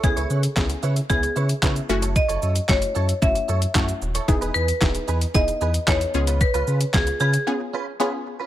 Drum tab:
HH |-x-x-x-x-x-x-x-x|-x-x-x-x-x-x-x-x|-x-x-x-x-x-x-x-x|-x-x-x-x--------|
SH |xxxxxxxxxxxxxxxx|xxxxxxxxxxxxxxxx|xxxxxxxxxxxxxxxx|xxxxxxxx--------|
CP |----x-------x---|----x-------x---|----x-------x---|----x-----------|
SD |----o-------o---|----o-------o---|----o-------o---|----o-----------|
BD |o---o---o---o---|o---o---o---o---|o---o---o---o---|o---o-----------|